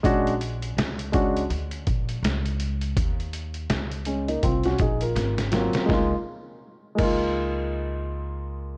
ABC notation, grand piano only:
X:1
M:4/4
L:1/16
Q:"Swing 16ths" 1/4=82
K:Db
V:1 name="Grand piano"
[A,^C=D^F]2 z4 [A,CDF]2 z8 | z6 [A,D] [B,E] [CF] [DG] [EA] [FB]2 z [G,B,CF]2 | [A,B,EF]2 z4 [A,B,EF]8- [A,B,EF]2 |]